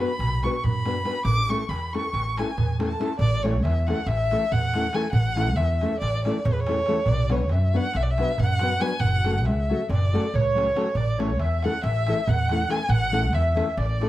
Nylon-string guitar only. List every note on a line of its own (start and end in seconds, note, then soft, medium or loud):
0.00 0.10 B3 medium
0.00 0.11 D4 medium
0.00 0.11 F#4 medium
0.00 0.11 B4 medium
0.44 0.55 B3 medium
0.44 0.55 D4 medium
0.44 0.56 F#4 medium
0.44 0.56 B4 medium
0.85 0.97 B3 medium
0.85 0.97 D4 medium
0.85 0.97 F#4 medium
0.85 0.98 B4 medium
1.05 1.16 B3 medium
1.05 1.16 D4 medium
1.05 1.17 F#4 medium
1.05 1.17 B4 medium
1.49 1.61 A3 medium
1.49 1.61 C#4 medium
1.49 1.61 E4 medium
1.49 1.62 A4 medium
1.94 2.05 A3 medium
1.94 2.05 C#4 medium
1.94 2.06 E4 medium
1.94 2.06 A4 medium
2.38 2.49 A3 medium
2.38 2.49 C#4 medium
2.38 2.50 E4 medium
2.38 2.50 A4 medium
2.79 2.91 A3 medium
2.79 2.91 C#4 medium
2.79 2.91 E4 soft
2.79 2.91 A4 medium
3.00 3.11 A3 medium
3.00 3.11 C#4 medium
3.00 3.11 E4 medium
3.00 3.11 A4 medium
3.43 3.54 E3 medium
3.43 3.55 A3 medium
3.43 3.55 C#4 medium
3.43 3.55 E4 medium
3.43 3.55 A4 medium
3.88 3.99 E3 medium
3.88 3.99 A3 medium
3.88 3.99 C#4 medium
3.88 3.99 E4 medium
3.88 4.00 A4 medium
4.31 4.42 E3 medium
4.31 4.43 A3 medium
4.31 4.43 C#4 medium
4.31 4.43 E4 medium
4.31 4.43 A4 medium
4.74 4.85 E3 medium
4.74 4.85 A3 medium
4.74 4.85 C#4 medium
4.74 4.85 E4 medium
4.74 4.86 A4 medium
4.94 5.05 E3 medium
4.94 5.05 A3 medium
4.94 5.05 C#4 medium
4.94 5.05 E4 medium
4.94 5.05 A4 medium
5.36 5.48 E3 medium
5.36 5.47 A3 medium
5.36 5.48 C#4 medium
5.36 5.48 E4 medium
5.36 5.49 A4 medium
5.81 5.92 E3 medium
5.81 5.93 A3 medium
5.81 5.93 C#4 medium
5.81 5.93 E4 medium
5.81 5.93 A4 medium
6.25 6.36 E3 medium
6.25 6.37 A3 medium
6.25 6.37 C#4 medium
6.25 6.37 E4 medium
6.25 6.37 A4 medium
6.68 6.78 E3 medium
6.68 6.78 A3 medium
6.68 6.79 C#4 medium
6.68 6.79 E4 soft
6.68 6.79 A4 medium
6.88 6.98 E3 medium
6.88 6.98 A3 medium
6.88 6.98 C#4 medium
6.88 6.99 E4 medium
6.88 6.99 A4 medium
7.29 7.41 F#3 medium
7.29 7.41 B3 medium
7.29 7.42 D4 medium
7.29 7.42 F#4 medium
7.29 7.42 B4 medium
7.74 7.85 F#3 medium
7.74 7.86 B3 medium
7.74 7.86 D4 medium
7.74 7.86 F#4 medium
7.74 7.86 B4 medium
8.18 8.30 F#3 medium
8.18 8.30 B3 medium
8.18 8.30 D4 medium
8.18 8.30 F#4 medium
8.18 8.31 B4 medium
8.61 8.72 F#3 medium
8.61 8.72 B3 medium
8.61 8.72 D4 medium
8.61 8.73 F#4 medium
8.61 8.73 B4 medium
8.80 8.91 F#3 medium
8.80 8.91 B3 medium
8.80 8.92 D4 medium
8.80 8.92 F#4 medium
8.80 8.92 B4 medium
9.24 9.36 F#3 medium
9.24 9.36 A3 medium
9.24 9.36 C#4 medium
9.24 9.36 F#4 medium
9.24 9.36 A4 medium
9.69 9.80 F#3 medium
9.69 9.80 A3 medium
9.69 9.81 C#4 medium
9.69 9.81 F#4 medium
9.69 9.81 A4 medium
10.13 10.24 F#3 medium
10.13 10.24 A3 medium
10.13 10.25 C#4 medium
10.13 10.25 F#4 medium
10.13 10.25 A4 medium
10.55 10.66 F#3 medium
10.55 10.66 A3 medium
10.55 10.67 C#4 soft
10.55 10.67 F#4 medium
10.55 10.67 A4 medium
10.75 10.86 F#3 medium
10.75 10.86 A3 medium
10.75 10.86 C#4 medium
10.75 10.87 F#4 medium
10.75 10.87 A4 medium
11.18 11.29 E3 medium
11.18 11.30 A3 medium
11.18 11.30 C#4 medium
11.18 11.30 E4 medium
11.18 11.30 A4 medium
11.64 11.74 E3 medium
11.64 11.75 A3 medium
11.64 11.75 C#4 medium
11.64 11.75 E4 medium
11.64 11.75 A4 medium
12.08 12.19 E3 medium
12.08 12.19 A3 medium
12.08 12.19 C#4 medium
12.08 12.19 E4 medium
12.08 12.19 A4 medium
12.50 12.61 E3 medium
12.50 12.61 A3 medium
12.50 12.61 C#4 medium
12.50 12.61 E4 medium
12.50 12.62 A4 medium
12.68 12.79 E3 medium
12.68 12.80 A3 medium
12.68 12.80 C#4 medium
12.68 12.80 E4 medium
12.68 12.80 A4 medium
13.12 13.23 E3 medium
13.12 13.23 A3 medium
13.12 13.24 C#4 medium
13.12 13.24 E4 medium
13.12 13.24 A4 medium
13.55 13.67 E3 medium
13.55 13.67 A3 medium
13.55 13.67 C#4 medium
13.55 13.68 E4 medium
13.55 13.68 A4 medium
14.00 14.09 E3 medium
14.00 14.09 A3 medium
14.00 14.09 C#4 medium
14.00 14.09 E4 medium
14.00 14.09 A4 medium